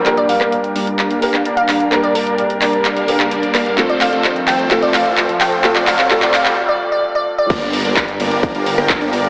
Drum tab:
CC |----------------|----------------|----------------|----------------|
HH |xxoxxxoxxxoxxxox|xxoxxxoxxxo-xxox|xxoxxxoxxxoxxxox|xxoxxxox--------|
CP |x--x----x--x--x-|x-----x-x--x--x-|x-x-x-x-x-x-x-x-|xxxxxxxx--------|
SD |---r-------r----|--------------r-|----------------|----------------|
BD |----------------|----------------|----------------|----------------|

CC |x---------------|
HH |xxoxxxoxxxoxxxox|
CP |----x-------x---|
SD |-----------r----|
BD |o---o---o---o---|